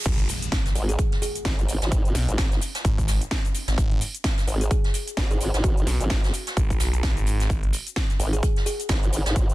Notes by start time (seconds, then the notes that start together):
0.06 G#1, kick, closed hi-hat, crash, impact, shaker
0.19 closed hi-hat
0.28 closed hi-hat, open hi-hat, shaker
0.42 closed hi-hat, shaker
0.52 kick, snare, closed hi-hat, shaker
0.65 snare, closed hi-hat, shaker
0.75 G#1, closed hi-hat, open hi-hat, shaker
0.89 G#4, closed hi-hat, shaker
0.99 G#4, kick, closed hi-hat, shaker
1.12 snare, closed hi-hat
1.22 G#4, closed hi-hat, open hi-hat, shaker
1.35 closed hi-hat, shaker
1.45 G#1, kick, snare, closed hi-hat, shaker
1.59 closed hi-hat, shaker
1.69 closed hi-hat, open hi-hat, shaker
1.82 G#1, snare, closed hi-hat, shaker
1.92 kick, closed hi-hat, shaker
2.05 closed hi-hat, shaker
2.15 B1, snare, closed hi-hat, open hi-hat, shaker
2.28 G#1, closed hi-hat, shaker
2.38 kick, snare, closed hi-hat, shaker
2.52 snare, closed hi-hat, shaker
2.61 closed hi-hat, open hi-hat, shaker
2.75 snare, closed hi-hat, shaker
2.85 G#1, kick, closed hi-hat, shaker
2.98 kick, closed hi-hat, shaker
3.08 snare, closed hi-hat, open hi-hat, shaker
3.22 closed hi-hat, shaker
3.31 kick, snare, closed hi-hat, shaker
3.45 closed hi-hat, shaker
3.54 closed hi-hat, open hi-hat, shaker
3.68 G#1, snare, closed hi-hat, shaker
3.78 G#1, kick, closed hi-hat, shaker
3.91 closed hi-hat
4.01 closed hi-hat, open hi-hat, shaker
4.15 closed hi-hat, shaker
4.24 kick, snare, closed hi-hat, shaker
4.37 snare, closed hi-hat, shaker
4.48 G#1, closed hi-hat, open hi-hat, shaker
4.61 G#4, closed hi-hat, shaker
4.70 G#4, kick, closed hi-hat, shaker
4.84 snare, closed hi-hat
4.94 closed hi-hat, open hi-hat, shaker
5.07 closed hi-hat, shaker
5.17 G#1, kick, snare, closed hi-hat, shaker
5.31 G#4, closed hi-hat, shaker
5.41 closed hi-hat, open hi-hat, shaker
5.54 G#1, snare, closed hi-hat, shaker
5.64 F#4, kick, closed hi-hat, shaker
5.77 closed hi-hat, shaker
5.87 B1, snare, closed hi-hat, open hi-hat, shaker
6.01 G#1, closed hi-hat, shaker
6.10 kick, snare, closed hi-hat, shaker
6.24 snare, closed hi-hat, shaker
6.33 closed hi-hat, open hi-hat, shaker
6.47 snare, closed hi-hat, shaker
6.57 G#1, kick, closed hi-hat, shaker
6.70 kick, closed hi-hat, shaker
6.79 B1, snare, closed hi-hat, open hi-hat, shaker
6.94 closed hi-hat, shaker
7.03 kick, snare, closed hi-hat, shaker
7.17 G#1, closed hi-hat, shaker
7.26 closed hi-hat, open hi-hat, shaker
7.40 snare, closed hi-hat, shaker
7.50 G#1, kick, closed hi-hat, shaker
7.63 closed hi-hat
7.73 closed hi-hat, open hi-hat, shaker
7.87 closed hi-hat, shaker
7.96 kick, snare, closed hi-hat, shaker
8.10 snare, closed hi-hat, shaker
8.19 G#1, closed hi-hat, open hi-hat, shaker
8.33 G#4, closed hi-hat, shaker
8.43 G#4, kick, closed hi-hat, shaker
8.56 snare, closed hi-hat
8.66 G#4, closed hi-hat, open hi-hat, shaker
8.79 closed hi-hat, shaker
8.89 G#1, kick, snare, closed hi-hat, shaker
9.03 closed hi-hat, shaker
9.12 closed hi-hat, open hi-hat, shaker
9.26 G#1, snare, closed hi-hat, shaker
9.36 kick, closed hi-hat, shaker
9.49 closed hi-hat, shaker